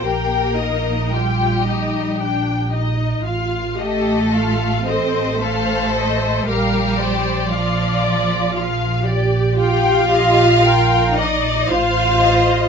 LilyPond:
<<
  \new Staff \with { instrumentName = "Violin section" } { \time 3/4 \key ees \lydian \tempo 4 = 57 g''8 ees''8 g''8 ees''8 g''8 ees''8 | f''8 ees''8 f''8 ees''8 f''8 ees''8 | f''8 d''8 f''8 d''8 f''8 d''8 | g''8 ees''8 g''8 ees''8 f''8 ees''8 | }
  \new Staff \with { instrumentName = "Violin section" } { \time 3/4 \key ees \lydian bes'4 g'4. r8 | r8 a'4 c''8 a'4 | g'4 f'4. r8 | f''4. ees''8 f''4 | }
  \new Staff \with { instrumentName = "Viola section" } { \time 3/4 \key ees \lydian g'8 ees'8 f'8 ees'8 d'8 ees'8 | f'8 g'8 f'8 a'8 c''4 | bes'8 c''8 d''4 f'8 g'8~ | g'4 bes'8 d''8 c''4 | }
  \new Staff \with { instrumentName = "Cello section" } { \time 3/4 \key ees \lydian bes4 g4. r8 | r8 a4 c'8 a4 | g4 f4. r8 | f'4. ees'8 f'4 | }
  \new Staff \with { instrumentName = "Double bass section" } { \clef bass \time 3/4 \key ees \lydian bes,,2. | a,,2. | bes,,2.~ | bes,,2 a,,4 | }
>>